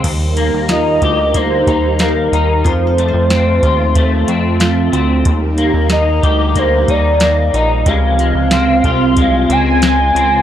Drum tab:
CC |x-------|--------|--------|--------|
HH |xxxxxxxx|xxxxxxxx|xxxxxxxx|xxxxxxxx|
SD |--o---o-|--o---o-|--o---o-|--o---o-|
BD |o--ooo--|o--oo---|o--ooo--|o--oo---|